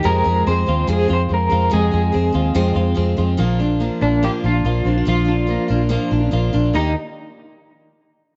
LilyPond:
<<
  \new Staff \with { instrumentName = "Clean electric guitar" } { \time 4/4 \key bes \mixolydian \tempo 4 = 143 bes'4 c''4 aes'8 c''8 bes'4 | aes'2 r2 | r4. d'8 g'8 f'4. | f'2. r4 |
ees'8 r2. r8 | }
  \new Staff \with { instrumentName = "Clean electric guitar" } { \time 4/4 \key bes \mixolydian aes8 aes8 c'8 f'8 c'8 f'8 c'8 f'8 | aes8 aes8 c'8 f'8 c'8 f'8 c'8 f'8 | <f f'>8 d'8 bes8 d'8 f'8 d'8 f'8 c'16 d'16 | <f f'>8 d'8 bes8 d'8 f'8 d'8 f'8 d'8 |
<ees bes ees' g'>8 r2. r8 | }
  \new Staff \with { instrumentName = "Steel-string acoustic guitar" } { \time 4/4 \key bes \mixolydian <f, c f aes c' aes'>8 <f aes c' aes'>8 <f aes c' aes'>8 <f aes c' aes'>8 <f, c f aes c' aes'>8 <f aes c' aes'>8 <f aes c' aes'>8 <f aes c' aes'>8 | <f, c f aes c' aes'>8 <f aes c' aes'>8 <f aes c' aes'>8 <f aes c' aes'>8 <f, c f aes c' aes'>8 <f aes c' aes'>8 <f aes c' aes'>8 <f aes c' aes'>8 | <bes, f bes d' f'>8 <bes d' f'>8 <f bes d' f'>8 <bes d' f'>8 <bes, f bes d' f'>8 <bes d' f'>8 <f bes d' f'>8 <bes d' f'>8 | <bes, f bes d' f'>8 <bes d' f'>8 <f bes d' f'>8 <bes d' f'>8 <bes, f bes d' f'>8 <bes d' f'>8 <f bes d' f'>8 <bes d' f'>8 |
<ees bes ees' g'>8 r2. r8 | }
  \new Staff \with { instrumentName = "Fingered electric bass" } { \clef bass \time 4/4 \key bes \mixolydian f,8 f,8 f,8 ees,8 f,8 f,8 f,8 f,8 | f,8 f,8 f,8 ees,8 f,8 f,8 f,8 f,8 | bes,,4~ bes,,16 r16 bes,,8. r16 bes,,8 bes,,8 bes,,8 | bes,,4~ bes,,16 r16 bes,,8. r16 bes,,8 bes,,8 bes,,8 |
ees,8 r2. r8 | }
>>